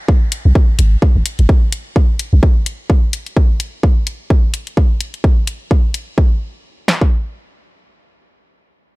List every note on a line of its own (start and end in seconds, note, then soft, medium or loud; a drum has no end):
0.08 kick loud
0.32 closed hi-hat medium
0.45 0.52 B1 medium
0.55 kick loud
0.79 0.96 G#1 medium
0.79 closed hi-hat medium
1.02 kick loud
1.16 1.23 G#1 medium
1.26 closed hi-hat medium
1.39 1.46 G#1 medium
1.39 closed hi-hat soft
1.49 kick loud
1.72 closed hi-hat medium
1.96 kick loud
2.19 closed hi-hat medium
2.33 2.40 B1 medium
2.43 kick loud
2.66 closed hi-hat medium
2.90 kick medium
3.13 closed hi-hat medium
3.26 closed hi-hat soft
3.37 kick loud
3.60 closed hi-hat medium
3.83 kick loud
4.07 closed hi-hat medium
4.30 kick loud
4.54 closed hi-hat medium
4.67 closed hi-hat soft
4.77 kick loud
5.01 closed hi-hat medium
5.14 closed hi-hat soft
5.24 kick loud
5.47 closed hi-hat medium
5.71 kick medium
5.94 closed hi-hat medium
6.18 kick loud
6.88 snare medium
7.01 kick medium